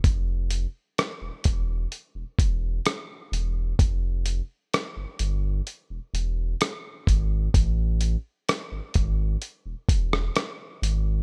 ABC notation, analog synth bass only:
X:1
M:4/4
L:1/16
Q:1/4=64
K:Amix
V:1 name="Analog synth bass" clef=bass
=F,,,3 z2 E,,, E,,,2 z E,,, E,,,2 z2 E,,,2 | =F,,,3 z2 G,,, G,,,2 z E,,, E,,,2 z2 ^G,,,2 | A,,,3 z2 ^G,,, G,,,2 z E,,, E,,,2 z2 G,,,2 |]